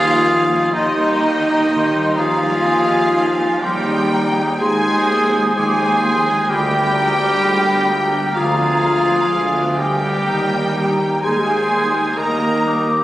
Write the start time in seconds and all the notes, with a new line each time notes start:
Already playing: D#2 D#3 F3 G3 D#4 F4 G4 G#4 F5
0.00 G3 D#4 A#4
0.24 D#3 G3 A#3
0.48 G3 D#4
0.73 D#2 D#3 G3 A#3 D#4 G4 D#5 C6
0.97 G3 D#4 A#4
1.22 D#3 A#3 C5 A#5
1.46 G3 D#4
1.70 D#2 D#3 A#3 G4 C6
1.94 G3 D#4 A#4
2.17 D#3 F3 G3 A#3 F4 G#4 F5 A#5
2.42 G3 D#4
2.65 D#2 D#3 F3 C4 G#5
2.88 G#3 D#4
3.13 F3 C4
3.38 G#3 D#4
3.61 D#2 F3 G3 C4 G4 G#4 A#4 G5 C6
3.86 G#3 D#4
4.10 F3 C4 D#4 A#5
4.34 G#3 C4 D#4
4.58 D#2 D#3 F3 G#3 C4 G#4 C5 G#5 C6
4.83 G#3 D#4 F4
5.07 F3 C4 D#6
5.30 G#3 D#4 F4
5.54 D#2 F3 G#3 C4 G#4 C5 G#5 D6
5.78 G#3 D#4 F4
6.02 F3 C4 D#4 C6
6.25 G#3 C4 D#4
6.48 D2 D3 G3 G#3 F4 G4 A#4 G5 B5
6.71 B3 D4 F4
6.94 G#3 F4 A#5
7.18 B3 D4 F4
7.42 D2 G#3 F4 G#4 B5
7.64 B3 D4 F4
7.88 G#3 F4 A#5
8.11 B3 D4
8.34 D2 D3 F3 G#3 F4 G#4 F5
8.58 B3 D4
8.81 G#3 F4 G4
9.06 B3 D4
9.30 D2 G#3 F4 G#4 G#5
9.54 B3 D4
9.78 G3 G#3 F4 G4 A#4 G5
10.02 B3 D4
10.26 D#2 D#3 G3 D#4 A#5
10.51 A#3 G4 A#4
10.75 G3 D#4 C5 A#5
10.99 A#3 G4 A#4
11.21 D#2 G3 G#3 D#4 G#4 C5 G#5 C6
11.46 A#3 G4 A#4
11.69 G3 A#3 D#4
11.93 A#3 D#4 G4
12.16 D#2 G3 A#3 D#4 A#4 D#5 A#5
12.40 A#3 G4
12.64 G3 D#4 C5 D6
12.87 A#3 G4 A#4